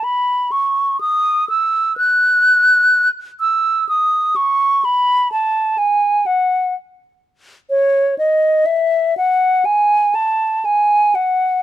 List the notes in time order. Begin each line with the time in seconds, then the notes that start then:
0.04 B5
0.52 C#6
1.01 D#6
1.49 E6
1.97 F#6
3.40 E6
3.89 D#6
4.36 C#6
4.85 B5
5.32 A5
5.78 G#5
6.26 F#5
7.70 C#5
8.18 D#5
8.66 E5
9.17 F#5
9.65 G#5
10.15 A5
10.65 G#5
11.15 F#5